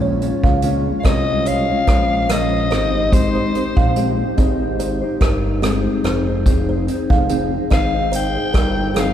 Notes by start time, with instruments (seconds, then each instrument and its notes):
Already playing: analog synth bass A#1, clean electric guitar A#2 F3 G#3 C#4 F4 C#5
0.02 kalimba C#5
0.21 clean electric guitar G#3 C#4 F4 C#5, closed hi-hat
0.43 analog synth bass C#2, kalimba F5, kick
0.62 clean electric guitar A#2 F3 G#3 C#4 F4 C#5, closed hi-hat
0.86 clean electric guitar G#3 C#4 F4 C#5
1.00 kalimba D#5, soprano saxophone F5
1.04 analog synth bass C2, clean electric guitar G#3 C#4 F4 C#5, soprano saxophone D#5, kick, cross-stick, closed hi-hat
1.27 clean electric guitar G#3 C#4 F4 C#5
1.46 kalimba C#5, soprano saxophone F5, closed hi-hat
1.69 clean electric guitar G#3 C#4 F4 C#5
1.87 analog synth bass A#1, kalimba C5, kick, cross-stick, closed hi-hat
2.29 clean electric guitar A#2 F3 G#3 C#4 F4 C#5, kalimba A#4, soprano saxophone D#5, cross-stick, closed hi-hat
2.70 analog synth bass G#1, clean electric guitar C4 D#4 G4 C5, kalimba C5, cross-stick, closed hi-hat
2.93 clean electric guitar D#4 G4 C5
3.12 clean electric guitar G#3 C4 D#4 G4 C5, soprano saxophone C5, kick, closed hi-hat
3.35 kalimba C5
3.54 clean electric guitar C4 D#4 G4 C5, closed hi-hat
3.77 analog synth bass A#1, kalimba F5, kick
3.96 clean electric guitar G#3 C4 D#4 G4 C5, closed hi-hat
4.19 clean electric guitar D#4 G4 C5
4.37 analog synth bass G#1, clean electric guitar C4 D#4 G4 C5, kalimba D#5, kick, closed hi-hat
4.60 clean electric guitar D#4 G4 C5
4.80 kalimba C5, closed hi-hat
5.02 clean electric guitar D#4 G4 C5
5.21 analog synth bass G1, kalimba A#4, kick, cross-stick, closed hi-hat
5.62 clean electric guitar G#3 C4 D#4 G4 C5, kalimba G#4, cross-stick, closed hi-hat
6.03 analog synth bass F1, clean electric guitar C4 D#4 G#4 C5, kalimba C5, cross-stick, closed hi-hat
6.27 clean electric guitar D#4 G#4 C5
6.46 clean electric guitar F3 C4 D#4 G#4 C5, kick, closed hi-hat
6.69 kalimba C5
6.87 clean electric guitar C4 D#4 G#4 C5, closed hi-hat
7.10 analog synth bass F1, kalimba F5, kick
7.29 clean electric guitar F3 C4 D#4 G#4 C5, closed hi-hat
7.52 clean electric guitar D#4 G#4 C5
7.71 analog synth bass G#1, clean electric guitar C4 D#4 G#4 C5, kalimba D#5, soprano saxophone F5, kick, cross-stick, closed hi-hat
7.94 clean electric guitar D#4 G#4 C5
8.12 kalimba C5, soprano saxophone G5, closed hi-hat
8.35 clean electric guitar D#4 G#4 C5
8.53 analog synth bass G1, kalimba A#4, kick, cross-stick, closed hi-hat
8.94 clean electric guitar F3 C4 D#4 G#4 C5, kalimba G#4, cross-stick, closed hi-hat
9.00 soprano saxophone F5